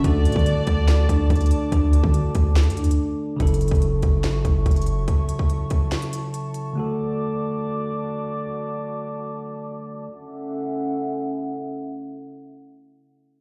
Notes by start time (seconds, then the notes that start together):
Already playing: F#4
0.02 D2 D3 A3 D4 D5 A5 D6, kick, closed hi-hat
0.06 F#4 A4
0.25 A2 F#4, closed hi-hat
0.32 D3, kick, closed hi-hat
0.39 closed hi-hat
0.46 closed hi-hat
0.67 D2, kick, closed hi-hat
0.88 snare, clap, closed hi-hat
1.09 D2 D4, kick, closed hi-hat
1.30 D2, kick, closed hi-hat
1.35 closed hi-hat
1.41 closed hi-hat
1.46 closed hi-hat
1.51 closed hi-hat
1.72 D2 D4, kick, closed hi-hat
1.93 F#4, closed hi-hat
2.04 D3, kick
2.14 closed hi-hat
2.35 D2, kick, closed hi-hat
2.56 snare, clap, closed hi-hat
2.63 F#2, closed hi-hat
2.70 closed hi-hat
2.77 D4, closed hi-hat
2.82 D2, closed hi-hat
2.91 closed hi-hat
3.36 F#1 C#3 F#3 F#4 E5 A5 C#6, kick, closed hi-hat
3.40 E4 A4
3.47 closed hi-hat
3.54 closed hi-hat
3.61 closed hi-hat
3.68 F#1, kick, closed hi-hat
3.75 closed hi-hat
3.82 closed hi-hat
4.03 F#1, kick, closed hi-hat
4.24 G#1, snare, clap, closed hi-hat
4.45 F#1, kick, closed hi-hat
4.66 F#1, kick, closed hi-hat
4.71 closed hi-hat
4.76 closed hi-hat
4.82 closed hi-hat
4.87 closed hi-hat
4.97 E1
5.08 kick, closed hi-hat
5.29 closed hi-hat
5.39 kick
5.50 closed hi-hat
5.70 kick, closed hi-hat
5.92 snare, clap, closed hi-hat
6.02 closed hi-hat
6.13 closed hi-hat
6.34 closed hi-hat
6.54 closed hi-hat
6.73 D3 A3 F#4 D5 D6
6.77 F#4 A4
10.11 C#4 A4 E5 F#5